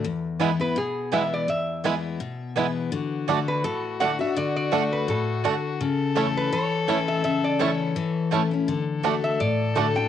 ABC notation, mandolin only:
X:1
M:4/4
L:1/16
Q:"Swing" 1/4=167
K:D
V:1 name="Mandolin"
z4 [B,EB^g] z6 z [B,EBg] z3 | z4 [B,EB^g] z6 z [B,EBg] z3 | z4 [A,Fdf] z6 z [A,Fdf] z3 | z4 [A,Fdf] z6 z [A,Fdf] z3 |
z4 [A,Eca] z6 z [A,Eca] z3 | z4 [A,Eca] z6 z [A,Eca] z3 | z4 [A,Fdf] z6 z [A,Fdf] z3 |]